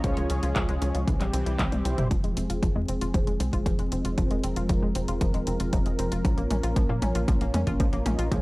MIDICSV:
0, 0, Header, 1, 6, 480
1, 0, Start_track
1, 0, Key_signature, -4, "minor"
1, 0, Tempo, 517241
1, 37, Time_signature, 4, 2, 24, 8
1, 7812, End_track
2, 0, Start_track
2, 0, Title_t, "Analog polysynth"
2, 0, Program_c, 0, 90
2, 36, Note_on_c, 0, 61, 94
2, 36, Note_on_c, 0, 68, 85
2, 37, Note_on_c, 0, 65, 87
2, 37, Note_on_c, 0, 73, 106
2, 982, Note_off_c, 0, 61, 0
2, 982, Note_off_c, 0, 68, 0
2, 983, Note_off_c, 0, 65, 0
2, 983, Note_off_c, 0, 73, 0
2, 1717, Note_on_c, 0, 64, 68
2, 1717, Note_on_c, 0, 67, 70
2, 1718, Note_on_c, 0, 60, 75
2, 1718, Note_on_c, 0, 72, 79
2, 1929, Note_off_c, 0, 60, 0
2, 1929, Note_off_c, 0, 64, 0
2, 1929, Note_off_c, 0, 67, 0
2, 1929, Note_off_c, 0, 72, 0
2, 3635, Note_on_c, 0, 65, 71
2, 3636, Note_on_c, 0, 68, 71
2, 3848, Note_off_c, 0, 65, 0
2, 3848, Note_off_c, 0, 68, 0
2, 3876, Note_on_c, 0, 60, 90
2, 3876, Note_on_c, 0, 65, 86
2, 3876, Note_on_c, 0, 68, 82
2, 3877, Note_on_c, 0, 72, 109
2, 5048, Note_off_c, 0, 60, 0
2, 5048, Note_off_c, 0, 65, 0
2, 5048, Note_off_c, 0, 68, 0
2, 5048, Note_off_c, 0, 72, 0
2, 5076, Note_on_c, 0, 60, 83
2, 5076, Note_on_c, 0, 65, 75
2, 5076, Note_on_c, 0, 68, 77
2, 5076, Note_on_c, 0, 77, 88
2, 5168, Note_off_c, 0, 60, 0
2, 5168, Note_off_c, 0, 65, 0
2, 5168, Note_off_c, 0, 68, 0
2, 5168, Note_off_c, 0, 77, 0
2, 5195, Note_on_c, 0, 60, 85
2, 5195, Note_on_c, 0, 65, 78
2, 5195, Note_on_c, 0, 68, 78
2, 5196, Note_on_c, 0, 75, 94
2, 5767, Note_off_c, 0, 60, 0
2, 5767, Note_off_c, 0, 65, 0
2, 5767, Note_off_c, 0, 68, 0
2, 5768, Note_off_c, 0, 75, 0
2, 5795, Note_on_c, 0, 61, 81
2, 5795, Note_on_c, 0, 65, 73
2, 5795, Note_on_c, 0, 70, 71
2, 5795, Note_on_c, 0, 73, 88
2, 7447, Note_off_c, 0, 61, 0
2, 7447, Note_off_c, 0, 65, 0
2, 7447, Note_off_c, 0, 70, 0
2, 7447, Note_off_c, 0, 73, 0
2, 7476, Note_on_c, 0, 61, 77
2, 7476, Note_on_c, 0, 65, 75
2, 7476, Note_on_c, 0, 70, 74
2, 7476, Note_on_c, 0, 75, 84
2, 7688, Note_off_c, 0, 61, 0
2, 7688, Note_off_c, 0, 65, 0
2, 7688, Note_off_c, 0, 70, 0
2, 7688, Note_off_c, 0, 75, 0
2, 7716, Note_on_c, 0, 61, 98
2, 7717, Note_on_c, 0, 65, 85
2, 7717, Note_on_c, 0, 68, 88
2, 7717, Note_on_c, 0, 73, 101
2, 7812, Note_off_c, 0, 61, 0
2, 7812, Note_off_c, 0, 65, 0
2, 7812, Note_off_c, 0, 68, 0
2, 7812, Note_off_c, 0, 73, 0
2, 7812, End_track
3, 0, Start_track
3, 0, Title_t, "Analog synth pad"
3, 0, Program_c, 1, 89
3, 0, Note_on_c, 1, 53, 83
3, 0, Note_on_c, 1, 61, 76
3, 36, Note_on_c, 1, 68, 86
3, 37, Note_on_c, 1, 56, 73
3, 968, Note_off_c, 1, 53, 0
3, 969, Note_off_c, 1, 61, 0
3, 987, Note_off_c, 1, 68, 0
3, 988, Note_off_c, 1, 56, 0
3, 997, Note_on_c, 1, 55, 73
3, 998, Note_on_c, 1, 60, 71
3, 998, Note_on_c, 1, 67, 87
3, 999, Note_on_c, 1, 52, 81
3, 1947, Note_off_c, 1, 55, 0
3, 1948, Note_off_c, 1, 60, 0
3, 1948, Note_off_c, 1, 67, 0
3, 1949, Note_off_c, 1, 52, 0
3, 1958, Note_on_c, 1, 68, 96
3, 1959, Note_on_c, 1, 53, 85
3, 1959, Note_on_c, 1, 56, 77
3, 1959, Note_on_c, 1, 60, 77
3, 3859, Note_off_c, 1, 68, 0
3, 3876, Note_on_c, 1, 70, 92
3, 5761, Note_off_c, 1, 56, 0
3, 5761, Note_off_c, 1, 60, 0
3, 5796, Note_on_c, 1, 58, 81
3, 5798, Note_on_c, 1, 61, 80
3, 7679, Note_off_c, 1, 70, 0
3, 7681, Note_off_c, 1, 53, 0
3, 7698, Note_off_c, 1, 58, 0
3, 7698, Note_off_c, 1, 61, 0
3, 7716, Note_on_c, 1, 68, 96
3, 7717, Note_on_c, 1, 53, 86
3, 7717, Note_on_c, 1, 56, 74
3, 7717, Note_on_c, 1, 61, 76
3, 7812, Note_off_c, 1, 53, 0
3, 7812, Note_off_c, 1, 56, 0
3, 7812, Note_off_c, 1, 61, 0
3, 7812, Note_off_c, 1, 68, 0
3, 7812, End_track
4, 0, Start_track
4, 0, Title_t, "Synth arpeggio sound"
4, 0, Program_c, 2, 84
4, 38, Note_on_c, 2, 53, 78
4, 106, Note_off_c, 2, 53, 0
4, 159, Note_on_c, 2, 56, 78
4, 199, Note_off_c, 2, 56, 0
4, 278, Note_on_c, 2, 61, 72
4, 347, Note_off_c, 2, 61, 0
4, 398, Note_on_c, 2, 65, 78
4, 467, Note_off_c, 2, 65, 0
4, 518, Note_on_c, 2, 53, 79
4, 586, Note_off_c, 2, 53, 0
4, 638, Note_on_c, 2, 56, 82
4, 679, Note_off_c, 2, 56, 0
4, 758, Note_on_c, 2, 61, 74
4, 826, Note_off_c, 2, 61, 0
4, 877, Note_on_c, 2, 65, 75
4, 946, Note_off_c, 2, 65, 0
4, 997, Note_on_c, 2, 52, 80
4, 1066, Note_off_c, 2, 52, 0
4, 1117, Note_on_c, 2, 55, 79
4, 1159, Note_off_c, 2, 55, 0
4, 1237, Note_on_c, 2, 60, 73
4, 1306, Note_off_c, 2, 60, 0
4, 1357, Note_on_c, 2, 64, 80
4, 1426, Note_off_c, 2, 64, 0
4, 1477, Note_on_c, 2, 52, 87
4, 1546, Note_off_c, 2, 52, 0
4, 1597, Note_on_c, 2, 55, 78
4, 1638, Note_off_c, 2, 55, 0
4, 1717, Note_on_c, 2, 60, 69
4, 1786, Note_off_c, 2, 60, 0
4, 1838, Note_on_c, 2, 64, 74
4, 1906, Note_off_c, 2, 64, 0
4, 1957, Note_on_c, 2, 53, 83
4, 2026, Note_off_c, 2, 53, 0
4, 2078, Note_on_c, 2, 56, 77
4, 2119, Note_off_c, 2, 56, 0
4, 2198, Note_on_c, 2, 60, 76
4, 2266, Note_off_c, 2, 60, 0
4, 2318, Note_on_c, 2, 65, 78
4, 2386, Note_off_c, 2, 65, 0
4, 2436, Note_on_c, 2, 53, 79
4, 2506, Note_off_c, 2, 53, 0
4, 2557, Note_on_c, 2, 56, 82
4, 2599, Note_off_c, 2, 56, 0
4, 2677, Note_on_c, 2, 60, 77
4, 2746, Note_off_c, 2, 60, 0
4, 2798, Note_on_c, 2, 65, 76
4, 2866, Note_off_c, 2, 65, 0
4, 2917, Note_on_c, 2, 53, 81
4, 2986, Note_off_c, 2, 53, 0
4, 3037, Note_on_c, 2, 56, 76
4, 3078, Note_off_c, 2, 56, 0
4, 3156, Note_on_c, 2, 60, 72
4, 3226, Note_off_c, 2, 60, 0
4, 3277, Note_on_c, 2, 65, 75
4, 3346, Note_off_c, 2, 65, 0
4, 3397, Note_on_c, 2, 53, 82
4, 3466, Note_off_c, 2, 53, 0
4, 3518, Note_on_c, 2, 56, 80
4, 3559, Note_off_c, 2, 56, 0
4, 3637, Note_on_c, 2, 60, 74
4, 3706, Note_off_c, 2, 60, 0
4, 3757, Note_on_c, 2, 65, 73
4, 3826, Note_off_c, 2, 65, 0
4, 3877, Note_on_c, 2, 53, 81
4, 3946, Note_off_c, 2, 53, 0
4, 3998, Note_on_c, 2, 56, 75
4, 4039, Note_off_c, 2, 56, 0
4, 4117, Note_on_c, 2, 60, 73
4, 4186, Note_off_c, 2, 60, 0
4, 4236, Note_on_c, 2, 65, 81
4, 4306, Note_off_c, 2, 65, 0
4, 4357, Note_on_c, 2, 53, 84
4, 4426, Note_off_c, 2, 53, 0
4, 4479, Note_on_c, 2, 56, 83
4, 4519, Note_off_c, 2, 56, 0
4, 4599, Note_on_c, 2, 60, 75
4, 4667, Note_off_c, 2, 60, 0
4, 4718, Note_on_c, 2, 65, 74
4, 4787, Note_off_c, 2, 65, 0
4, 4837, Note_on_c, 2, 53, 80
4, 4906, Note_off_c, 2, 53, 0
4, 4958, Note_on_c, 2, 56, 81
4, 4999, Note_off_c, 2, 56, 0
4, 5079, Note_on_c, 2, 60, 76
4, 5147, Note_off_c, 2, 60, 0
4, 5198, Note_on_c, 2, 65, 76
4, 5267, Note_off_c, 2, 65, 0
4, 5318, Note_on_c, 2, 53, 87
4, 5386, Note_off_c, 2, 53, 0
4, 5438, Note_on_c, 2, 56, 74
4, 5479, Note_off_c, 2, 56, 0
4, 5558, Note_on_c, 2, 60, 75
4, 5626, Note_off_c, 2, 60, 0
4, 5678, Note_on_c, 2, 65, 74
4, 5746, Note_off_c, 2, 65, 0
4, 5797, Note_on_c, 2, 53, 82
4, 5866, Note_off_c, 2, 53, 0
4, 5916, Note_on_c, 2, 58, 76
4, 5958, Note_off_c, 2, 58, 0
4, 6037, Note_on_c, 2, 61, 73
4, 6106, Note_off_c, 2, 61, 0
4, 6157, Note_on_c, 2, 65, 80
4, 6226, Note_off_c, 2, 65, 0
4, 6276, Note_on_c, 2, 53, 83
4, 6346, Note_off_c, 2, 53, 0
4, 6397, Note_on_c, 2, 58, 79
4, 6438, Note_off_c, 2, 58, 0
4, 6517, Note_on_c, 2, 61, 78
4, 6586, Note_off_c, 2, 61, 0
4, 6638, Note_on_c, 2, 65, 74
4, 6706, Note_off_c, 2, 65, 0
4, 6755, Note_on_c, 2, 53, 83
4, 6825, Note_off_c, 2, 53, 0
4, 6876, Note_on_c, 2, 58, 76
4, 6918, Note_off_c, 2, 58, 0
4, 6996, Note_on_c, 2, 61, 73
4, 7066, Note_off_c, 2, 61, 0
4, 7116, Note_on_c, 2, 65, 82
4, 7186, Note_off_c, 2, 65, 0
4, 7236, Note_on_c, 2, 53, 85
4, 7305, Note_off_c, 2, 53, 0
4, 7356, Note_on_c, 2, 58, 78
4, 7398, Note_off_c, 2, 58, 0
4, 7475, Note_on_c, 2, 61, 76
4, 7545, Note_off_c, 2, 61, 0
4, 7597, Note_on_c, 2, 65, 73
4, 7666, Note_off_c, 2, 65, 0
4, 7716, Note_on_c, 2, 53, 79
4, 7786, Note_off_c, 2, 53, 0
4, 7812, End_track
5, 0, Start_track
5, 0, Title_t, "Analog synth bass"
5, 0, Program_c, 3, 38
5, 37, Note_on_c, 3, 37, 99
5, 138, Note_off_c, 3, 37, 0
5, 158, Note_on_c, 3, 37, 78
5, 258, Note_off_c, 3, 37, 0
5, 278, Note_on_c, 3, 37, 89
5, 378, Note_off_c, 3, 37, 0
5, 398, Note_on_c, 3, 37, 84
5, 498, Note_off_c, 3, 37, 0
5, 518, Note_on_c, 3, 37, 104
5, 618, Note_off_c, 3, 37, 0
5, 638, Note_on_c, 3, 37, 78
5, 738, Note_off_c, 3, 37, 0
5, 759, Note_on_c, 3, 37, 98
5, 859, Note_off_c, 3, 37, 0
5, 880, Note_on_c, 3, 37, 82
5, 979, Note_off_c, 3, 37, 0
5, 998, Note_on_c, 3, 36, 94
5, 1098, Note_off_c, 3, 36, 0
5, 1120, Note_on_c, 3, 34, 75
5, 1219, Note_off_c, 3, 34, 0
5, 1239, Note_on_c, 3, 36, 95
5, 1338, Note_off_c, 3, 36, 0
5, 1358, Note_on_c, 3, 36, 79
5, 1458, Note_off_c, 3, 36, 0
5, 1477, Note_on_c, 3, 36, 106
5, 1578, Note_off_c, 3, 36, 0
5, 1597, Note_on_c, 3, 36, 77
5, 1697, Note_off_c, 3, 36, 0
5, 1718, Note_on_c, 3, 36, 97
5, 1818, Note_off_c, 3, 36, 0
5, 1837, Note_on_c, 3, 31, 82
5, 1938, Note_off_c, 3, 31, 0
5, 1957, Note_on_c, 3, 29, 94
5, 2058, Note_off_c, 3, 29, 0
5, 2078, Note_on_c, 3, 29, 75
5, 2178, Note_off_c, 3, 29, 0
5, 2197, Note_on_c, 3, 29, 91
5, 2297, Note_off_c, 3, 29, 0
5, 2318, Note_on_c, 3, 29, 82
5, 2418, Note_off_c, 3, 29, 0
5, 2436, Note_on_c, 3, 29, 100
5, 2537, Note_off_c, 3, 29, 0
5, 2557, Note_on_c, 3, 41, 74
5, 2658, Note_off_c, 3, 41, 0
5, 2677, Note_on_c, 3, 29, 92
5, 2778, Note_off_c, 3, 29, 0
5, 2797, Note_on_c, 3, 29, 79
5, 2897, Note_off_c, 3, 29, 0
5, 2917, Note_on_c, 3, 29, 98
5, 3017, Note_off_c, 3, 29, 0
5, 3035, Note_on_c, 3, 29, 78
5, 3137, Note_off_c, 3, 29, 0
5, 3156, Note_on_c, 3, 36, 91
5, 3257, Note_off_c, 3, 36, 0
5, 3276, Note_on_c, 3, 29, 81
5, 3377, Note_off_c, 3, 29, 0
5, 3396, Note_on_c, 3, 29, 106
5, 3497, Note_off_c, 3, 29, 0
5, 3515, Note_on_c, 3, 29, 77
5, 3617, Note_off_c, 3, 29, 0
5, 3635, Note_on_c, 3, 29, 91
5, 3737, Note_off_c, 3, 29, 0
5, 3756, Note_on_c, 3, 29, 80
5, 3857, Note_off_c, 3, 29, 0
5, 3876, Note_on_c, 3, 29, 100
5, 3977, Note_off_c, 3, 29, 0
5, 3995, Note_on_c, 3, 29, 77
5, 4097, Note_off_c, 3, 29, 0
5, 4115, Note_on_c, 3, 29, 86
5, 4217, Note_off_c, 3, 29, 0
5, 4235, Note_on_c, 3, 29, 87
5, 4337, Note_off_c, 3, 29, 0
5, 4356, Note_on_c, 3, 29, 102
5, 4457, Note_off_c, 3, 29, 0
5, 4476, Note_on_c, 3, 29, 77
5, 4577, Note_off_c, 3, 29, 0
5, 4598, Note_on_c, 3, 29, 96
5, 4698, Note_off_c, 3, 29, 0
5, 4717, Note_on_c, 3, 29, 85
5, 4817, Note_off_c, 3, 29, 0
5, 4836, Note_on_c, 3, 29, 97
5, 4937, Note_off_c, 3, 29, 0
5, 4956, Note_on_c, 3, 27, 76
5, 5057, Note_off_c, 3, 27, 0
5, 5076, Note_on_c, 3, 29, 94
5, 5177, Note_off_c, 3, 29, 0
5, 5195, Note_on_c, 3, 29, 79
5, 5297, Note_off_c, 3, 29, 0
5, 5315, Note_on_c, 3, 29, 103
5, 5417, Note_off_c, 3, 29, 0
5, 5436, Note_on_c, 3, 29, 74
5, 5537, Note_off_c, 3, 29, 0
5, 5556, Note_on_c, 3, 29, 95
5, 5657, Note_off_c, 3, 29, 0
5, 5677, Note_on_c, 3, 29, 78
5, 5778, Note_off_c, 3, 29, 0
5, 5796, Note_on_c, 3, 34, 101
5, 5897, Note_off_c, 3, 34, 0
5, 5916, Note_on_c, 3, 34, 72
5, 6017, Note_off_c, 3, 34, 0
5, 6037, Note_on_c, 3, 34, 90
5, 6138, Note_off_c, 3, 34, 0
5, 6157, Note_on_c, 3, 34, 84
5, 6258, Note_off_c, 3, 34, 0
5, 6276, Note_on_c, 3, 34, 107
5, 6377, Note_off_c, 3, 34, 0
5, 6398, Note_on_c, 3, 46, 73
5, 6498, Note_off_c, 3, 46, 0
5, 6518, Note_on_c, 3, 34, 92
5, 6618, Note_off_c, 3, 34, 0
5, 6637, Note_on_c, 3, 34, 84
5, 6737, Note_off_c, 3, 34, 0
5, 6756, Note_on_c, 3, 34, 97
5, 6857, Note_off_c, 3, 34, 0
5, 6877, Note_on_c, 3, 34, 78
5, 6978, Note_off_c, 3, 34, 0
5, 6996, Note_on_c, 3, 41, 95
5, 7097, Note_off_c, 3, 41, 0
5, 7117, Note_on_c, 3, 34, 80
5, 7218, Note_off_c, 3, 34, 0
5, 7237, Note_on_c, 3, 34, 106
5, 7338, Note_off_c, 3, 34, 0
5, 7357, Note_on_c, 3, 34, 77
5, 7457, Note_off_c, 3, 34, 0
5, 7477, Note_on_c, 3, 34, 93
5, 7578, Note_off_c, 3, 34, 0
5, 7597, Note_on_c, 3, 34, 84
5, 7697, Note_off_c, 3, 34, 0
5, 7717, Note_on_c, 3, 37, 100
5, 7812, Note_off_c, 3, 37, 0
5, 7812, End_track
6, 0, Start_track
6, 0, Title_t, "Drums"
6, 36, Note_on_c, 9, 42, 66
6, 38, Note_on_c, 9, 36, 112
6, 129, Note_off_c, 9, 42, 0
6, 130, Note_off_c, 9, 36, 0
6, 157, Note_on_c, 9, 42, 40
6, 250, Note_off_c, 9, 42, 0
6, 276, Note_on_c, 9, 42, 92
6, 369, Note_off_c, 9, 42, 0
6, 397, Note_on_c, 9, 42, 41
6, 490, Note_off_c, 9, 42, 0
6, 517, Note_on_c, 9, 39, 114
6, 517, Note_on_c, 9, 42, 66
6, 518, Note_on_c, 9, 36, 114
6, 610, Note_off_c, 9, 36, 0
6, 610, Note_off_c, 9, 39, 0
6, 610, Note_off_c, 9, 42, 0
6, 638, Note_on_c, 9, 42, 38
6, 731, Note_off_c, 9, 42, 0
6, 758, Note_on_c, 9, 42, 92
6, 851, Note_off_c, 9, 42, 0
6, 878, Note_on_c, 9, 42, 40
6, 971, Note_off_c, 9, 42, 0
6, 998, Note_on_c, 9, 36, 112
6, 999, Note_on_c, 9, 42, 66
6, 1091, Note_off_c, 9, 36, 0
6, 1092, Note_off_c, 9, 42, 0
6, 1119, Note_on_c, 9, 39, 37
6, 1119, Note_on_c, 9, 42, 43
6, 1212, Note_off_c, 9, 39, 0
6, 1212, Note_off_c, 9, 42, 0
6, 1239, Note_on_c, 9, 42, 97
6, 1332, Note_off_c, 9, 42, 0
6, 1359, Note_on_c, 9, 42, 42
6, 1452, Note_off_c, 9, 42, 0
6, 1478, Note_on_c, 9, 36, 109
6, 1479, Note_on_c, 9, 39, 111
6, 1479, Note_on_c, 9, 42, 69
6, 1479, Note_on_c, 9, 48, 60
6, 1571, Note_off_c, 9, 36, 0
6, 1572, Note_off_c, 9, 39, 0
6, 1572, Note_off_c, 9, 42, 0
6, 1572, Note_off_c, 9, 48, 0
6, 1599, Note_on_c, 9, 42, 43
6, 1599, Note_on_c, 9, 48, 62
6, 1692, Note_off_c, 9, 42, 0
6, 1692, Note_off_c, 9, 48, 0
6, 1719, Note_on_c, 9, 42, 95
6, 1812, Note_off_c, 9, 42, 0
6, 1838, Note_on_c, 9, 42, 40
6, 1838, Note_on_c, 9, 45, 78
6, 1931, Note_off_c, 9, 42, 0
6, 1931, Note_off_c, 9, 45, 0
6, 1957, Note_on_c, 9, 36, 117
6, 1958, Note_on_c, 9, 42, 78
6, 1958, Note_on_c, 9, 47, 44
6, 2050, Note_off_c, 9, 36, 0
6, 2051, Note_off_c, 9, 42, 0
6, 2051, Note_off_c, 9, 47, 0
6, 2078, Note_on_c, 9, 42, 35
6, 2171, Note_off_c, 9, 42, 0
6, 2198, Note_on_c, 9, 42, 81
6, 2290, Note_off_c, 9, 42, 0
6, 2318, Note_on_c, 9, 42, 56
6, 2411, Note_off_c, 9, 42, 0
6, 2437, Note_on_c, 9, 36, 115
6, 2438, Note_on_c, 9, 42, 77
6, 2438, Note_on_c, 9, 47, 49
6, 2530, Note_off_c, 9, 36, 0
6, 2531, Note_off_c, 9, 42, 0
6, 2531, Note_off_c, 9, 47, 0
6, 2677, Note_on_c, 9, 42, 82
6, 2770, Note_off_c, 9, 42, 0
6, 2797, Note_on_c, 9, 42, 53
6, 2890, Note_off_c, 9, 42, 0
6, 2916, Note_on_c, 9, 36, 120
6, 2918, Note_on_c, 9, 42, 78
6, 2918, Note_on_c, 9, 47, 50
6, 3009, Note_off_c, 9, 36, 0
6, 3010, Note_off_c, 9, 42, 0
6, 3010, Note_off_c, 9, 47, 0
6, 3037, Note_on_c, 9, 42, 37
6, 3130, Note_off_c, 9, 42, 0
6, 3157, Note_on_c, 9, 42, 80
6, 3250, Note_off_c, 9, 42, 0
6, 3276, Note_on_c, 9, 36, 61
6, 3277, Note_on_c, 9, 42, 52
6, 3369, Note_off_c, 9, 36, 0
6, 3370, Note_off_c, 9, 42, 0
6, 3396, Note_on_c, 9, 36, 116
6, 3397, Note_on_c, 9, 42, 81
6, 3397, Note_on_c, 9, 47, 55
6, 3489, Note_off_c, 9, 36, 0
6, 3490, Note_off_c, 9, 42, 0
6, 3490, Note_off_c, 9, 47, 0
6, 3516, Note_on_c, 9, 42, 38
6, 3609, Note_off_c, 9, 42, 0
6, 3636, Note_on_c, 9, 42, 79
6, 3729, Note_off_c, 9, 42, 0
6, 3756, Note_on_c, 9, 42, 48
6, 3849, Note_off_c, 9, 42, 0
6, 3876, Note_on_c, 9, 36, 118
6, 3876, Note_on_c, 9, 42, 78
6, 3876, Note_on_c, 9, 47, 54
6, 3969, Note_off_c, 9, 36, 0
6, 3969, Note_off_c, 9, 42, 0
6, 3969, Note_off_c, 9, 47, 0
6, 3996, Note_on_c, 9, 42, 35
6, 4089, Note_off_c, 9, 42, 0
6, 4116, Note_on_c, 9, 42, 78
6, 4208, Note_off_c, 9, 42, 0
6, 4235, Note_on_c, 9, 42, 54
6, 4328, Note_off_c, 9, 42, 0
6, 4355, Note_on_c, 9, 42, 77
6, 4355, Note_on_c, 9, 47, 58
6, 4356, Note_on_c, 9, 36, 122
6, 4448, Note_off_c, 9, 42, 0
6, 4448, Note_off_c, 9, 47, 0
6, 4449, Note_off_c, 9, 36, 0
6, 4595, Note_on_c, 9, 42, 82
6, 4688, Note_off_c, 9, 42, 0
6, 4716, Note_on_c, 9, 42, 49
6, 4809, Note_off_c, 9, 42, 0
6, 4835, Note_on_c, 9, 42, 78
6, 4835, Note_on_c, 9, 47, 63
6, 4836, Note_on_c, 9, 36, 122
6, 4928, Note_off_c, 9, 42, 0
6, 4928, Note_off_c, 9, 47, 0
6, 4929, Note_off_c, 9, 36, 0
6, 4956, Note_on_c, 9, 42, 39
6, 5049, Note_off_c, 9, 42, 0
6, 5075, Note_on_c, 9, 42, 80
6, 5168, Note_off_c, 9, 42, 0
6, 5196, Note_on_c, 9, 42, 53
6, 5288, Note_off_c, 9, 42, 0
6, 5315, Note_on_c, 9, 42, 78
6, 5315, Note_on_c, 9, 47, 69
6, 5316, Note_on_c, 9, 36, 118
6, 5408, Note_off_c, 9, 42, 0
6, 5408, Note_off_c, 9, 47, 0
6, 5409, Note_off_c, 9, 36, 0
6, 5435, Note_on_c, 9, 42, 36
6, 5528, Note_off_c, 9, 42, 0
6, 5556, Note_on_c, 9, 42, 75
6, 5649, Note_off_c, 9, 42, 0
6, 5676, Note_on_c, 9, 42, 51
6, 5769, Note_off_c, 9, 42, 0
6, 5797, Note_on_c, 9, 36, 120
6, 5797, Note_on_c, 9, 42, 79
6, 5797, Note_on_c, 9, 47, 72
6, 5889, Note_off_c, 9, 36, 0
6, 5889, Note_off_c, 9, 42, 0
6, 5889, Note_off_c, 9, 47, 0
6, 5917, Note_on_c, 9, 42, 34
6, 6010, Note_off_c, 9, 42, 0
6, 6037, Note_on_c, 9, 42, 78
6, 6037, Note_on_c, 9, 47, 75
6, 6130, Note_off_c, 9, 42, 0
6, 6130, Note_off_c, 9, 47, 0
6, 6157, Note_on_c, 9, 42, 53
6, 6250, Note_off_c, 9, 42, 0
6, 6276, Note_on_c, 9, 42, 74
6, 6276, Note_on_c, 9, 47, 79
6, 6277, Note_on_c, 9, 36, 124
6, 6369, Note_off_c, 9, 36, 0
6, 6369, Note_off_c, 9, 42, 0
6, 6369, Note_off_c, 9, 47, 0
6, 6516, Note_on_c, 9, 42, 77
6, 6516, Note_on_c, 9, 47, 76
6, 6609, Note_off_c, 9, 42, 0
6, 6609, Note_off_c, 9, 47, 0
6, 6636, Note_on_c, 9, 42, 50
6, 6729, Note_off_c, 9, 42, 0
6, 6756, Note_on_c, 9, 42, 76
6, 6756, Note_on_c, 9, 47, 78
6, 6757, Note_on_c, 9, 36, 127
6, 6849, Note_off_c, 9, 36, 0
6, 6849, Note_off_c, 9, 42, 0
6, 6849, Note_off_c, 9, 47, 0
6, 6876, Note_on_c, 9, 42, 39
6, 6969, Note_off_c, 9, 42, 0
6, 6997, Note_on_c, 9, 42, 80
6, 6997, Note_on_c, 9, 47, 83
6, 7090, Note_off_c, 9, 42, 0
6, 7090, Note_off_c, 9, 47, 0
6, 7117, Note_on_c, 9, 36, 61
6, 7117, Note_on_c, 9, 42, 52
6, 7210, Note_off_c, 9, 36, 0
6, 7210, Note_off_c, 9, 42, 0
6, 7237, Note_on_c, 9, 36, 127
6, 7237, Note_on_c, 9, 42, 74
6, 7237, Note_on_c, 9, 47, 82
6, 7330, Note_off_c, 9, 36, 0
6, 7330, Note_off_c, 9, 42, 0
6, 7330, Note_off_c, 9, 47, 0
6, 7357, Note_on_c, 9, 42, 36
6, 7450, Note_off_c, 9, 42, 0
6, 7477, Note_on_c, 9, 42, 75
6, 7477, Note_on_c, 9, 47, 85
6, 7570, Note_off_c, 9, 42, 0
6, 7570, Note_off_c, 9, 47, 0
6, 7598, Note_on_c, 9, 42, 51
6, 7690, Note_off_c, 9, 42, 0
6, 7717, Note_on_c, 9, 36, 122
6, 7717, Note_on_c, 9, 42, 74
6, 7717, Note_on_c, 9, 47, 91
6, 7810, Note_off_c, 9, 36, 0
6, 7810, Note_off_c, 9, 42, 0
6, 7810, Note_off_c, 9, 47, 0
6, 7812, End_track
0, 0, End_of_file